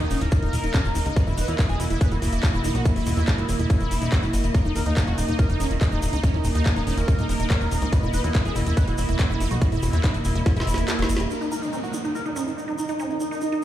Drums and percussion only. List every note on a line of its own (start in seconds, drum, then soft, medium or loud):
0.00 closed hi-hat soft
0.10 open hi-hat loud
0.10 shaker medium
0.21 closed hi-hat medium
0.21 shaker soft
0.32 kick loud
0.32 closed hi-hat medium
0.32 shaker medium
0.42 closed hi-hat soft
0.42 shaker soft
0.53 open hi-hat loud
0.53 shaker medium
0.64 closed hi-hat medium
0.64 shaker soft
0.74 kick loud
0.74 clap loud
0.74 closed hi-hat medium
0.74 shaker medium
0.84 shaker soft
0.95 open hi-hat loud
0.95 shaker loud
1.06 closed hi-hat medium
1.06 shaker soft
1.16 kick loud
1.16 closed hi-hat medium
1.16 shaker medium
1.27 shaker soft
1.38 open hi-hat loud
1.38 shaker loud
1.48 closed hi-hat medium
1.48 shaker soft
1.59 kick loud
1.59 clap loud
1.59 closed hi-hat medium
1.59 shaker medium
1.69 closed hi-hat soft
1.69 shaker soft
1.80 open hi-hat loud
1.80 shaker medium
1.90 closed hi-hat medium
1.90 shaker soft
2.01 kick loud
2.01 closed hi-hat medium
2.01 shaker medium
2.12 closed hi-hat soft
2.12 shaker soft
2.22 open hi-hat loud
2.22 shaker loud
2.32 closed hi-hat medium
2.32 shaker soft
2.43 kick loud
2.43 clap loud
2.43 closed hi-hat medium
2.43 shaker medium
2.54 shaker soft
2.64 open hi-hat loud
2.64 shaker loud
2.75 closed hi-hat medium
2.75 shaker soft
2.85 kick loud
2.85 closed hi-hat medium
2.85 shaker medium
2.96 open hi-hat medium
2.96 shaker soft
3.06 open hi-hat loud
3.06 shaker loud
3.17 clap soft
3.17 closed hi-hat soft
3.17 shaker soft
3.27 kick loud
3.27 clap loud
3.27 closed hi-hat medium
3.27 shaker medium
3.38 closed hi-hat soft
3.38 shaker soft
3.49 open hi-hat loud
3.49 shaker medium
3.59 closed hi-hat medium
3.59 shaker soft
3.70 kick loud
3.70 closed hi-hat medium
3.70 shaker medium
3.79 closed hi-hat soft
3.79 shaker soft
3.91 open hi-hat loud
3.91 shaker loud
4.02 closed hi-hat medium
4.02 shaker soft
4.12 kick loud
4.12 clap loud
4.12 closed hi-hat medium
4.12 shaker medium
4.23 shaker soft
4.33 open hi-hat loud
4.33 shaker loud
4.44 closed hi-hat medium
4.44 shaker soft
4.54 kick loud
4.54 closed hi-hat medium
4.54 shaker medium
4.65 shaker soft
4.76 open hi-hat loud
4.76 shaker medium
4.86 closed hi-hat medium
4.86 shaker soft
4.97 kick loud
4.97 clap loud
4.97 closed hi-hat medium
4.97 shaker medium
5.07 closed hi-hat soft
5.18 open hi-hat loud
5.18 shaker loud
5.28 closed hi-hat medium
5.28 shaker soft
5.39 kick loud
5.39 closed hi-hat medium
5.39 shaker soft
5.49 closed hi-hat soft
5.49 shaker soft
5.60 open hi-hat loud
5.60 shaker loud
5.70 closed hi-hat medium
5.70 shaker soft
5.81 kick loud
5.81 clap loud
5.81 closed hi-hat medium
5.81 shaker soft
5.91 shaker soft
6.02 open hi-hat loud
6.02 shaker loud
6.13 closed hi-hat medium
6.13 shaker soft
6.24 kick loud
6.24 closed hi-hat medium
6.24 shaker medium
6.33 shaker soft
6.44 open hi-hat loud
6.44 shaker medium
6.55 clap soft
6.55 closed hi-hat medium
6.55 shaker soft
6.66 kick loud
6.66 clap loud
6.66 closed hi-hat medium
6.66 shaker medium
6.76 closed hi-hat soft
6.76 shaker soft
6.87 open hi-hat loud
6.87 shaker medium
6.97 closed hi-hat medium
6.97 shaker soft
7.08 kick loud
7.08 closed hi-hat medium
7.08 shaker medium
7.18 closed hi-hat soft
7.18 shaker soft
7.29 open hi-hat loud
7.29 shaker medium
7.40 closed hi-hat medium
7.40 shaker soft
7.50 kick loud
7.50 clap loud
7.50 closed hi-hat medium
7.50 shaker soft
7.61 shaker soft
7.71 open hi-hat loud
7.71 shaker medium
7.81 closed hi-hat medium
7.81 shaker soft
7.93 kick loud
7.93 closed hi-hat medium
7.93 shaker medium
8.03 shaker soft
8.13 open hi-hat loud
8.13 shaker loud
8.24 closed hi-hat medium
8.24 shaker soft
8.34 kick loud
8.34 clap loud
8.34 closed hi-hat medium
8.34 shaker soft
8.45 closed hi-hat soft
8.45 shaker soft
8.56 open hi-hat loud
8.56 shaker medium
8.66 closed hi-hat medium
8.66 shaker soft
8.77 kick loud
8.77 closed hi-hat medium
8.77 shaker soft
8.88 closed hi-hat soft
8.88 shaker soft
8.98 open hi-hat loud
8.98 shaker medium
9.09 closed hi-hat medium
9.09 shaker soft
9.19 kick loud
9.19 clap loud
9.19 closed hi-hat medium
9.19 shaker medium
9.30 shaker soft
9.40 open hi-hat loud
9.40 shaker medium
9.51 closed hi-hat medium
9.51 shaker soft
9.61 kick loud
9.61 closed hi-hat medium
9.61 shaker medium
9.71 open hi-hat medium
9.71 shaker soft
9.82 open hi-hat loud
9.82 shaker medium
9.93 clap soft
9.93 closed hi-hat medium
9.93 shaker soft
10.04 kick loud
10.04 clap loud
10.04 closed hi-hat medium
10.04 shaker medium
10.14 closed hi-hat soft
10.14 shaker soft
10.25 open hi-hat loud
10.25 shaker medium
10.35 closed hi-hat medium
10.35 shaker soft
10.46 kick loud
10.46 snare medium
10.46 closed hi-hat medium
10.46 shaker medium
10.56 open hi-hat medium
10.56 shaker soft
10.60 snare medium
10.67 open hi-hat loud
10.67 shaker loud
10.74 snare medium
10.74 closed hi-hat medium
10.74 shaker soft
10.88 snare medium
10.88 clap loud
10.88 closed hi-hat medium
10.88 shaker soft
10.99 snare loud
10.99 closed hi-hat soft
10.99 shaker soft
11.09 open hi-hat loud
11.09 shaker medium
11.16 snare loud
11.16 closed hi-hat medium
11.30 shaker medium
11.41 shaker soft
11.52 shaker medium
11.62 shaker soft
11.73 shaker soft
11.84 shaker soft
11.93 shaker medium
12.04 shaker soft
12.15 shaker soft
12.25 shaker soft
12.36 shaker loud
12.47 shaker soft
12.58 shaker medium
12.68 shaker soft
12.78 shaker loud
12.88 shaker soft
12.99 shaker soft
13.10 shaker soft
13.20 shaker medium
13.32 shaker soft
13.41 shaker medium
13.52 shaker soft